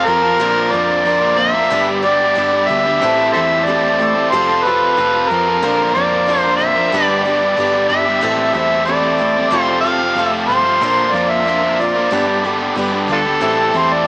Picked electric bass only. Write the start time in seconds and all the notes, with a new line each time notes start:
0.07 F2
0.40 A#1
0.73 F2
1.71 G1
2.37 G1
2.70 D2
3.03 A1
3.36 E2
4.33 F1
4.98 F1
5.31 F2
5.63 A#1
5.96 F2
6.93 G1
7.58 G1
7.90 G1
8.23 A1
8.55 E2
9.51 F1
10.17 F1
10.49 G1
10.82 A#1
11.13 F2
12.12 G1
12.76 G1
13.09 D2
13.42 A1
13.74 E2